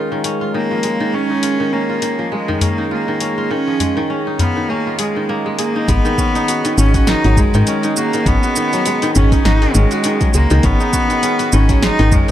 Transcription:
Already playing: D#3 G#3 C#4 D#4 F4 G#4 A#4 C#5 F5
0.12 D#3
0.24 C#4, open hi-hat
0.41 F4
0.54 D#3 A#3
0.71 F3
0.83 G#3, open hi-hat
1.00 D#3
1.13 C#4
1.30 D#4
1.43 F4, open hi-hat
1.60 D#3
1.73 A#3 C#4
1.89 F4
2.02 D#3, open hi-hat
2.19 F3
2.28 G#3 D#5
2.33 G#3
2.48 D#3, udu
2.61 A#3 C#4, open hi-hat, udu
2.78 D#4
2.91 A#3 F4
3.08 D#3
3.20 C#4, open hi-hat
3.38 F4
3.50 D#3 C#4
3.67 F3
3.80 G#3, open hi-hat, udu
3.97 D#3
4.10 C#4
4.27 D#4
4.39 B3 F4, open hi-hat, udu
4.57 D#3
4.69 A#3 C#4
4.87 F4
4.99 G#3 G#4, open hi-hat
5.16 D#3
5.29 A#3
5.46 G#3
5.59 A#3 G#4, open hi-hat
5.76 D#4
5.88 G#1 G#3 B3, kick, open hi-hat, shaker
6.05 D#3, shaker
6.18 C#4, kick, shaker
6.35 D#4, open hi-hat, shaker
6.48 F#4, open hi-hat, shaker
6.65 D#3, open hi-hat, shaker
6.78 G#1 C#4, shaker
6.94 F#4, kick, open hi-hat, shaker
7.07 D#3 D#4, snare, open hi-hat, shaker
7.24 G#1 F#3, open hi-hat
7.37 G#3, kick, udu, shaker
7.54 G#2 D#3, open hi-hat, shaker
7.67 C#4, open hi-hat, shaker
7.83 D#4, open hi-hat, shaker
7.97 A#3 F#4, shaker
8.13 D#3, open hi-hat, shaker
8.26 G#1 B3 C#4, kick, open hi-hat, shaker
8.43 F#4, shaker
8.56 D#3, shaker
8.73 F#3, open hi-hat, shaker
8.86 G#3, open hi-hat, shaker
9.02 D#3, open hi-hat, shaker
9.15 G#1 C#4, udu, shaker
9.32 D#4, kick, open hi-hat, shaker
9.45 G#1 D#4 F#4, snare, open hi-hat, shaker
9.62 D#3, open hi-hat
9.75 G#1 G#3 C#4, shaker
9.91 F#4, open hi-hat, shaker
10.04 D#3, open hi-hat, shaker
10.21 F#3, kick, open hi-hat, shaker
10.34 C#2 G#3 A#3, shaker
10.50 C#2 D#3, open hi-hat, shaker
10.63 G#1 B3 C#4, kick, open hi-hat, shaker
10.80 D#4, shaker
10.93 F#4, kick, shaker
11.10 D#3, open hi-hat, shaker
11.23 C#4, open hi-hat, shaker
11.39 F#4, open hi-hat, shaker
11.52 G#1 D#3 C#4, shaker
11.69 F#3, kick, open hi-hat, shaker
11.82 G#3 D#4, snare, open hi-hat, shaker
11.99 G#1 D#3, open hi-hat
12.11 G#3 C#4, kick, udu, shaker
12.28 D#4

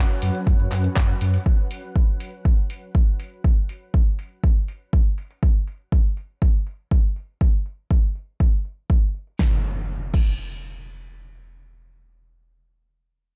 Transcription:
Already playing: F#3 C#4 B4 F#5
0.10 closed hi-hat
0.22 F#2, open hi-hat
0.35 closed hi-hat
0.47 F#2, kick, closed hi-hat
0.59 F#2, closed hi-hat
0.72 F#2, clap, open hi-hat
0.84 closed hi-hat
0.96 F#2, kick, clap, closed hi-hat
1.09 closed hi-hat
1.21 F#2, open hi-hat
1.34 open hi-hat
1.46 kick
1.71 open hi-hat
1.96 kick
2.20 open hi-hat
2.45 kick
2.70 open hi-hat
2.95 kick
3.20 open hi-hat
3.44 kick
3.69 open hi-hat
3.94 kick
4.19 open hi-hat
4.44 kick
4.68 open hi-hat
4.93 kick
5.18 open hi-hat
5.31 open hi-hat
5.43 kick
5.67 open hi-hat
5.92 kick
6.17 open hi-hat
6.42 kick
6.67 open hi-hat
6.91 kick
7.16 open hi-hat
7.41 kick
7.66 open hi-hat
7.91 kick
8.15 open hi-hat
8.40 kick
8.65 open hi-hat
8.90 kick
9.15 open hi-hat
9.27 open hi-hat
9.39 kick, snare, impact
10.14 kick, crash

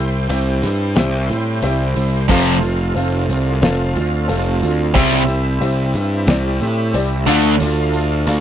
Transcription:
Already playing: C2 C4 E4 G4 C5 E5 G5
0.00 G3
0.28 C2 G3 C4 E4 G4 C5 E5, open hi-hat
0.62 G2, snare, open hi-hat
0.96 C2 G4 C5 E5, snare, open hi-hat
1.28 A2 G3 C4 E4 C5, open hi-hat
1.62 C2 G3 C4 E4 G4 C5 E5, open hi-hat
1.94 C2 G3 C4 E4 C5, open hi-hat
2.28 F1 F2 C3 F3 A3 C4 F4 A4 C5 F5, kick, open hi-hat
2.61 C4 F4 C5, open hi-hat
2.95 F1 A3 C4 F4 A4 C5 F5, open hi-hat
3.29 C2, open hi-hat
3.62 F1 A4 C5 F5, snare, open hi-hat
3.94 D2 C4 F4 C5, open hi-hat
4.27 F1 A3 C4 F4 A4 C5 F5, open hi-hat
4.61 D2 C4 F4 C5, open hi-hat
4.94 C2 C3 E3 G3 C4 C#4 E4 F4 G4 G#4 C5 E5 F5, kick, open hi-hat
5.17 C4 E4 G4 E5
5.27 G3 C4 E4 C5, open hi-hat
5.60 C2 G3 C4 E4 G4 C5 E5, open hi-hat
5.94 G2, open hi-hat
6.27 C2 G4 C5 D5, snare, open hi-hat
6.59 A2 G3 C4 E4 C5, open hi-hat
6.93 C2 G3 C4 E4 G4 C5 D5, open hi-hat
7.27 D2 D3 A3 D4 F4 A4 D5 F5, open hi-hat
7.59 D2 D3 A3 D4 F4 A4, open hi-hat
7.92 D4 F4 A4, open hi-hat
8.25 D2 A3 D4 F4 A4 D5 F5, open hi-hat

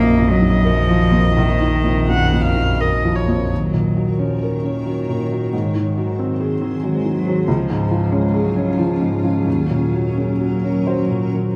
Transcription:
Already playing: A#1 F2 F#2 D#3 A#3 D#4 A#4 D#5
0.19 F2
0.31 F#3
0.41 D#4
0.64 F3 A#4
0.89 F3
1.12 F2
1.37 A#1 D#3
1.61 D#4
1.84 F2
2.09 F#2 F#5
2.33 F2
2.45 F5
2.56 D#4
2.80 A#4 D#5
3.04 F3
3.15 C#5
3.28 F2
3.51 D#2 D#3 F#3 A#4 C#5
3.74 A#2
3.97 F#3
4.18 F3 C#4
4.43 A#4
4.52 D#3
4.64 C#4
4.86 F#3
5.09 A#2
5.32 F#3
5.51 G#2 G#4 C5
5.75 D#3
5.97 F#3
6.19 C4
6.40 G#4
6.61 C4
6.83 F#3 G#3
7.05 D#3
7.15 F#3
7.27 F#3
7.47 C#2 F3 C#4 F4
7.70 G#2
7.91 F3
8.11 G#3 C#4
8.34 G#4
8.44 F#3
8.56 C#4
8.77 F3
9.01 G#2
9.11 G#3
9.24 F3
9.46 D#2 F#3 A#4
9.71 A#2
9.94 F#3
10.17 C#4
10.41 F#4
10.63 C#4
10.87 F#3 C5
11.11 A#2
11.35 F#3

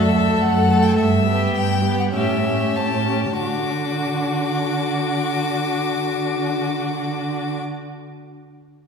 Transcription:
Already playing: F#2 A3 A4 E5
0.15 A3 A4
0.42 F#2 F#5
0.70 A3 A4
0.83 G5
0.96 G2 E5
1.26 B3 G4
1.55 G2 G5
1.84 B3 G4
1.99 F#5
2.13 A2 C#4 G4 E5
2.43 C#4 G4
2.74 A2 A5
3.06 C#4 G4
3.38 D3 D4 D6
3.42 F#4

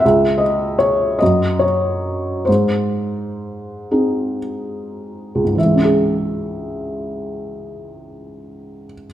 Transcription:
0.00 E5
0.05 C#2
0.38 D#5
0.79 C#5
1.19 F#2 D#5
1.59 C#5
2.45 G#2 C5
3.91 C4 D#4 G#4
5.35 C#2
5.45 G#2
5.55 E3 E5
5.65 G#3
5.75 C#4
5.85 G#4

